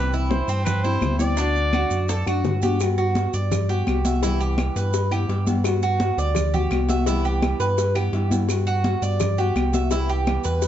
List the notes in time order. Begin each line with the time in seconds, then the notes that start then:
Already playing: C2 C3 E3 G3 C4 E4 G4 B4
0.13 E4, high bongo, high conga, maracas
0.30 E3 G3 C4 E4 C5, high bongo, high conga, maracas
0.48 G2 C4, high conga, maracas
0.65 B4, muted nylon-string guitar stroke, high bongo, high conga, low conga, claves, maracas
0.84 E3 G3 C4 E4 C5, high bongo, high conga, maracas
1.01 D2 E3 G3 C4 E4, high bongo, low bongo, high conga, claves, maracas
1.19 E3 G3 C4 E4 D5, high bongo, high conga, maracas
1.37 D3 A3 D4 F#4, high bongo, high conga, maracas
1.55 high bongo, high conga, maracas
1.73 D3 A3 D4 F#4, high bongo, high conga, claves, maracas
1.90 F#2, high conga, maracas
2.09 A4, muted nylon-string guitar stroke, high bongo, high conga, maracas
2.26 F#2 A3 D4 F#4, high bongo, high conga, claves, maracas
2.44 G2 D3 A3 D4 F#4, high bongo, low bongo, high conga, maracas
2.62 A3 D4 F#4 G4, high bongo, high conga, maracas
2.80 G3 B3 F#4, cowbell, claves, maracas
2.98 F#4, high conga, maracas
3.15 G3 B3 F#4, cowbell, high conga, maracas
3.33 G2 D5, high conga, maracas
3.51 muted nylon-string guitar stroke, cowbell, high conga, low conga, claves, maracas
3.69 B3 F#4 G4, high conga, maracas
3.87 C2 G3 B3 F#4, cowbell, high conga, claves, maracas
4.05 B3 F#4 E5, cowbell, high conga, maracas
4.23 C3 E3 G3 B3 E4, cowbell, maracas
4.40 G4, high conga, maracas
4.58 E3 G3 B3 E4, cowbell, high conga, claves, maracas
4.76 G2 B4, cowbell, high conga, maracas
4.93 muted nylon-string guitar stroke, cowbell, high conga, maracas
5.11 E3 G3 B3 E4 G4, high conga, claves, maracas
5.29 G2 E3 G3 B3 E4, cowbell, high conga, maracas
5.47 E3 G3 B3 E4, cowbell, high conga, maracas
5.64 G3 B3 F#4, cowbell, claves, maracas
5.82 F#4, high conga, maracas
6.00 G3 B3 F#4, cowbell, high conga, maracas
6.17 D2 D5, high conga, maracas
6.35 muted nylon-string guitar stroke, cowbell, high conga, low conga, claves, maracas
6.54 B3 F#4 G4, high conga, low conga, maracas
6.71 C2 G3 B3 F#4, cowbell, high conga, claves, maracas
6.88 B3 F#4 E5, cowbell, high conga, maracas
7.06 C3 E3 G3 B3 E4, cowbell, high conga, maracas
7.25 G4, high conga, maracas
7.42 E3 G3 B3 E4, cowbell, high conga, claves, maracas
7.60 G2 B4, cowbell, high conga, maracas
7.77 muted nylon-string guitar stroke, cowbell, high conga, maracas
7.95 E3 G3 B3 E4 G4, high conga, claves, maracas
8.12 G2 E3 G3 B3 E4, cowbell, high conga, maracas
8.30 E3 G3 B3 E4, cowbell, high conga, maracas
8.49 G3 B3 F#4, cowbell, high conga, claves, maracas
8.67 F#4, high conga, maracas
8.84 G3 B3 F#4, cowbell, high conga, maracas
9.02 G2 D5, high conga, maracas
9.20 muted nylon-string guitar stroke, cowbell, high conga, low conga, claves, maracas
9.38 B3 F#4 G4, high conga, maracas
9.55 C2 G3 B3 F#4, cowbell, high conga, claves, maracas
9.72 B3 F#4 E5, cowbell, high conga, maracas
9.90 C3 E3 G3 B3 E4, cowbell, high conga, maracas
10.09 G4, high conga, maracas
10.27 E3 G3 B3 E4, cowbell, high conga, claves, maracas
10.44 E2 B4, cowbell, high conga, maracas
10.62 muted nylon-string guitar stroke, cowbell, high conga, maracas